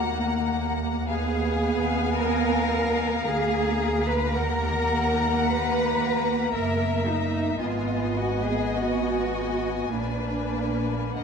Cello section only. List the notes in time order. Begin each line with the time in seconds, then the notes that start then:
1.09 G#4
2.16 A#4
3.26 G#4
4.08 B4
4.37 A#4
5.46 B4
6.53 A#4
7.07 D#4
7.61 F4
8.17 F#4
8.45 G#4
8.74 F#4
9.93 D4
11.18 D4